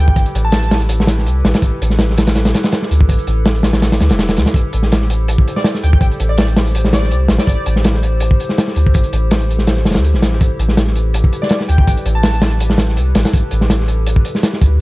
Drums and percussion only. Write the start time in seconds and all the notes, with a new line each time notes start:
0.08 kick
0.16 kick, closed hi-hat
0.26 closed hi-hat
0.35 closed hi-hat
0.52 snare, closed hi-hat
0.63 closed hi-hat
0.71 snare, closed hi-hat
0.80 closed hi-hat
0.89 closed hi-hat
1.00 snare
1.07 snare, closed hi-hat
1.18 snare
1.26 closed hi-hat
1.45 snare, closed hi-hat
1.54 snare, closed hi-hat
1.62 kick, closed hi-hat
1.82 closed hi-hat
1.90 snare
1.99 snare, closed hi-hat
2.10 snare
2.17 snare, closed hi-hat
2.27 snare, closed hi-hat
2.35 snare, closed hi-hat
2.45 snare, closed hi-hat
2.54 snare, closed hi-hat
2.64 snare, closed hi-hat
2.72 snare, closed hi-hat
2.82 snare
2.91 closed hi-hat
3.01 kick
3.09 kick, closed hi-hat
3.19 closed hi-hat
3.27 closed hi-hat
3.46 snare, closed hi-hat
3.56 closed hi-hat
3.63 snare, closed hi-hat
3.73 snare, closed hi-hat
3.82 snare, closed hi-hat
3.92 snare, closed hi-hat
4.00 snare, closed hi-hat
4.10 snare, closed hi-hat
4.19 snare, closed hi-hat
4.28 snare, closed hi-hat
4.37 snare, closed hi-hat
4.46 snare, closed hi-hat
4.54 kick, closed hi-hat
4.73 closed hi-hat
4.83 snare
4.92 snare, closed hi-hat
5.01 snare
5.10 closed hi-hat
5.28 closed hi-hat
5.38 kick
5.48 closed hi-hat
5.56 snare
5.64 snare, closed hi-hat
5.74 snare
5.84 closed hi-hat
5.93 kick
6.01 kick, closed hi-hat
6.11 closed hi-hat
6.20 closed hi-hat
6.38 snare, closed hi-hat
6.48 closed hi-hat
6.56 snare, closed hi-hat
6.67 closed hi-hat
6.75 closed hi-hat
6.85 snare
6.93 snare, closed hi-hat
7.03 snare
7.11 closed hi-hat
7.28 snare, closed hi-hat
7.39 snare, closed hi-hat
7.47 kick, closed hi-hat
7.66 closed hi-hat
7.76 snare
7.84 snare, closed hi-hat
7.94 snare
8.03 closed hi-hat
8.20 closed hi-hat
8.31 kick
8.40 closed hi-hat
8.49 snare
8.58 snare, closed hi-hat
8.68 snare
8.76 closed hi-hat
8.87 kick
8.94 kick, closed hi-hat
9.04 closed hi-hat
9.13 closed hi-hat
9.31 snare, closed hi-hat
9.41 closed hi-hat
9.51 closed hi-hat
9.59 snare
9.67 snare, closed hi-hat
9.77 snare
9.85 snare, closed hi-hat
9.90 snare, closed hi-hat
9.95 snare, closed hi-hat
10.04 closed hi-hat
10.14 snare
10.22 snare, closed hi-hat
10.32 snare
10.41 kick, closed hi-hat
10.59 closed hi-hat
10.69 snare
10.77 snare, closed hi-hat
10.87 snare
10.95 closed hi-hat
11.14 closed hi-hat
11.24 kick
11.33 closed hi-hat
11.43 snare
11.49 snare, closed hi-hat
11.60 snare
11.69 closed hi-hat
11.78 kick
11.87 kick, closed hi-hat
11.97 closed hi-hat
12.06 closed hi-hat
12.23 snare, closed hi-hat
12.34 closed hi-hat
12.42 snare, closed hi-hat
12.51 closed hi-hat
12.60 closed hi-hat
12.70 snare
12.78 snare, closed hi-hat
12.89 snare
12.97 closed hi-hat
13.15 snare, closed hi-hat
13.25 snare, closed hi-hat
13.33 kick, closed hi-hat
13.51 closed hi-hat
13.61 snare
13.70 snare, closed hi-hat
13.80 snare
13.88 closed hi-hat
14.06 closed hi-hat
14.16 kick
14.25 closed hi-hat
14.35 snare
14.43 snare, closed hi-hat
14.53 snare
14.62 kick, closed hi-hat